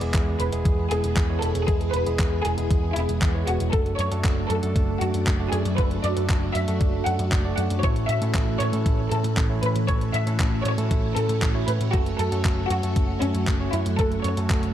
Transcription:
Already playing: E3 G#3 B3 G#4 D5
0.01 E1 G#3 B3 E4 G#4, closed hi-hat
0.14 E2, kick, clap, closed hi-hat
0.40 E1 B4, closed hi-hat
0.52 E1 G#3 B3 E4 G#4, closed hi-hat
0.65 E2, kick, closed hi-hat
0.91 E1 G#3 B3 E4 G#4, closed hi-hat
1.04 E1, closed hi-hat
1.17 E2, kick, clap, closed hi-hat
1.30 G#3 B3 E4 C#5
1.42 E1 A4, closed hi-hat
1.55 E1, closed hi-hat
1.68 E2 G#3 B3 E4 G#4, kick, closed hi-hat
1.81 closed hi-hat
1.94 E1 B4, closed hi-hat
2.06 E1 G#3 B3 E4 G#4, closed hi-hat
2.19 E2, kick, clap, closed hi-hat
2.45 E1 G#4, closed hi-hat
2.58 E1 G#3 B3 E4 G#4, closed hi-hat
2.71 E2, kick, closed hi-hat
2.96 E1 G#3 B3 E4 G#4, closed hi-hat
3.09 E1, closed hi-hat
3.22 E2, kick, clap, closed hi-hat
3.35 G#3 B3 E4 C#5
3.47 E1 F#4, closed hi-hat
3.60 E1, closed hi-hat
3.73 F#1 F#3 A3 D4 F#4 A4, kick, closed hi-hat
3.86 closed hi-hat
3.99 F#2 C#5, closed hi-hat
4.11 F#2 A3 D4 F#4 A4, closed hi-hat
4.24 F#1, kick, clap, closed hi-hat
4.50 F#2 A4, closed hi-hat
4.63 F#2 A3 D4 F#4 A4, closed hi-hat
4.76 F#1, kick, closed hi-hat
5.01 F#2 A3 D4 F#4 A4, closed hi-hat
5.14 F#2, closed hi-hat
5.27 F#1, kick, clap, closed hi-hat
5.40 A3 D4 F#4 D5
5.53 F#2 G#4, closed hi-hat
5.65 F#2, closed hi-hat
5.78 F#1 A3 D4 F#4 A4 B4, kick, closed hi-hat
5.91 closed hi-hat
6.04 F#2 D5, closed hi-hat
6.17 F#2 A3 D4 F#4 A4, closed hi-hat
6.30 F#1, kick, clap, closed hi-hat
6.55 F#2 E5, closed hi-hat
6.68 F#2 A3 D4 F#4 A4, closed hi-hat
6.81 F#1, kick, closed hi-hat
7.06 F#2 A3 D4 F#4 A4 F#5, closed hi-hat
7.19 F#2, closed hi-hat
7.32 F#1, kick, clap, closed hi-hat
7.45 A3 D4 F#4 D5
7.58 F#2 F#5, closed hi-hat
7.70 F#2, closed hi-hat
7.83 A1 E3 A3 C#4 E4 A4 C#5, kick, closed hi-hat
7.96 closed hi-hat
8.09 A2 E5, closed hi-hat
8.22 A2 A3 C#4 E4 A4, closed hi-hat
8.35 A1, kick, clap, closed hi-hat
8.60 A2 C#5, closed hi-hat
8.73 A2 A3 C#4 E4 A4, closed hi-hat
8.86 A1, kick, closed hi-hat
9.11 A2 A3 C#4 E4 A4, closed hi-hat
9.24 A2, closed hi-hat
9.37 A1, kick, clap, closed hi-hat
9.50 A3 C#4 E4 C#5
9.63 A2 B4, closed hi-hat
9.75 A2, closed hi-hat
9.88 A1 A3 C#4 E4 A4 C#5, kick, closed hi-hat
10.01 closed hi-hat
10.14 A2 E5, closed hi-hat
10.27 A2 A3 C#4 E4 A4, closed hi-hat
10.40 A1, kick, clap, closed hi-hat
10.65 A2 C#5, closed hi-hat
10.78 A2 A3 C#4 E4 A4, closed hi-hat
10.91 A1, kick, closed hi-hat
11.16 A2 A3 C#4 E4 A4, closed hi-hat
11.29 A2, closed hi-hat
11.42 A1, kick, clap, closed hi-hat
11.55 A3 C#4 E4 C#5
11.68 A2 B4, closed hi-hat
11.81 A2, closed hi-hat
11.93 F#1 F#3 A3 C#4 F#4 A4, kick, closed hi-hat
12.06 closed hi-hat
12.19 F#2 A4, closed hi-hat
12.32 F#2 A3 C#4 F#4 A4, closed hi-hat
12.45 F#1, kick, clap, closed hi-hat
12.70 F#2 F#4, closed hi-hat
12.83 F#2 A3 C#4 F#4 A4, closed hi-hat
12.96 F#1, kick, closed hi-hat
13.22 F#2 A3 C#4 F#4 A4, closed hi-hat
13.35 F#2, closed hi-hat
13.47 F#1, kick, clap, closed hi-hat
13.60 A3 C#4 F#4 C#5
13.73 F#2 E4, closed hi-hat
13.86 F#2, closed hi-hat
13.99 F#1 A3 C#4 F#4 A4, kick, closed hi-hat
14.12 closed hi-hat
14.24 F#2 C#5, closed hi-hat
14.37 F#2 A3 C#4 F#4 A4, closed hi-hat
14.50 F#1, kick, clap, closed hi-hat
14.63 closed hi-hat

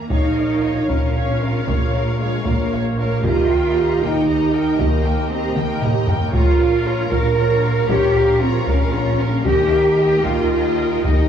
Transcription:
Already playing: A#3 A#5
0.10 A#1 A#3 D#4 F4 A#4 C#5 F5, taiko
0.36 A#4 C#5 F5
0.62 C#5 F5
0.88 A#1 C#4 A#4 C#5 F5, taiko
1.15 C#5 F5
1.41 A#4 C#5 F5
1.66 A#1 A#3 C#5 F5, taiko
1.93 A#4 C#5 F5
2.19 G#3 C#5 F5
2.45 A#1 A#3 A#4 C#5 F5, taiko
2.72 C#5 F5
2.98 A#4 C#5 F5
3.24 D#2 F4 G4 D#5 A#5, taiko
3.51 A#4 G5
3.76 G4 D#5 A#5
4.02 D#2 D#4 A#4 G5, taiko
4.28 G4 D#5 A#5
4.53 A#4 G5
4.79 D#2 A#3 G4 D#5 A#5, taiko
5.04 A#4 G5
5.31 C4 G4 D#5 A#5
5.56 D#2 A#3 A#4 G5, taiko mid
5.82 G4 D#5 A#5, taiko low-mid
6.07 A#4 G5, taiko low
6.32 A#1 A#2 A#3 F4 A#4 C#5 A#5, taiko
6.59 A#4 F5
6.86 F4 C#5 A#5
7.11 A#1 A#4 F5, taiko
7.37 F4 C#5 A#5
7.63 A#4 F5
7.88 A#1 F4 G4 C#5 A#5, taiko
8.14 A#4 F5
8.41 C4 F4 C#5 A#5
8.66 A#1 C#4 A#4 F5, taiko
8.93 F4 C#5 A#5
9.20 A#4 F5
9.46 D#2 D#4 G4 D#5 G5, taiko
9.72 A#4 D#5 G5
9.98 G4 D#5 G5
10.24 D#2 F4 A#4 D#5 G5, taiko
10.51 G4 D#5 G5
10.77 A#4 D#5 G5
11.04 D#2 D#4 G4 D#5 G5, taiko

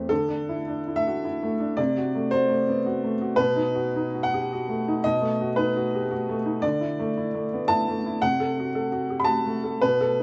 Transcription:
Already playing: E2 E3 A3 C4 G4
0.09 D3 A4
0.28 D4
0.49 E4
0.68 D4
0.88 E4
0.96 E5
1.07 F#4
1.25 E4
1.43 A3
1.60 D4
1.77 C3 D5
1.97 F#4
2.15 A3
2.31 F#4 C5
2.49 A3
2.68 B3
2.86 F#4
3.04 A3
3.21 F#4
3.36 B2 B4
3.56 D#4
3.75 F#4
3.96 D#4
4.14 F#4
4.23 F#5
4.34 G4
4.53 F#4
4.69 A3
4.88 D#4
5.04 B2 D#5
5.21 A3
5.41 F#4
5.56 D#4 B4
5.76 F#4
5.95 G4
6.11 F#4
6.29 A3
6.45 D#4
6.62 D3 D5
6.81 E4
6.99 A3
7.17 E4
7.34 A3
7.53 B3
7.68 E4 A5
7.88 A3
8.06 E4
8.22 C3 F#5
8.40 A4
8.59 F#4
8.75 A4
8.92 F#4
9.10 G4
9.20 B5
9.24 F#4 A5
9.46 A3
9.64 A4
9.81 B2 B4
10.01 A4
10.20 D#4

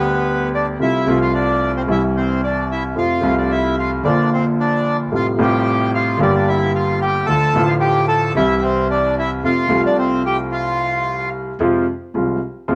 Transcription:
Already playing: D2 D3 G3 B3 G4
0.00 B3 B4
0.54 D4 D5
0.79 C2 C3 F3 A3 E4 F4 E5
1.06 C2 C3 F3 A3 F4
1.22 F4 F5
1.34 D4 D5
1.77 C4 C5
1.88 C2 C3 E3 G3 E4 E5
2.17 C4 C5
2.44 D4 D5
2.71 E4 E5
2.96 F2 C3 F3 A3 F4 F5
3.21 C2 C3 F3 A3 F4
3.38 D4 D5
3.51 E4 E5
3.79 F4 F5
4.03 A#1 A#2 D3 F3 A#3 D4 D5
4.08 F4
4.33 C4 C5
4.60 D4 D5
5.12 A1 A2 C3 G3 A3 F4 F5
5.16 F4
5.37 A1 A2 C3 G3 A3
5.41 F4 G4 G5
5.95 F4 F5
6.17 G1 G2 D3 G3 A#3
6.21 D4 G4 D5
6.48 E4 E5
6.75 F4 F5
7.01 G4 G5
7.26 D2 D3 F3 A3 F4 A4 A5
7.54 A1 A2 D3 F3 A3 F4
7.67 F4 F5
7.80 G4 G5
8.08 A4 A5
8.35 C2 C3 E3 G3 E4 E5
8.39 E4
8.62 C4 C5
8.90 D4 D5
9.18 E4 E5
9.43 F2 C3 F3 A3 F4 F5
9.67 C2 C3 F3 A3 F4
9.85 D4 D5
9.98 C4 C5
10.25 G4 G5
10.52 F4 F5
11.59 F2 C3 F3 G#3 F4
12.14 C2 C3 F3 G#3 F4
12.68 F2 C3 F3 G#3 F4

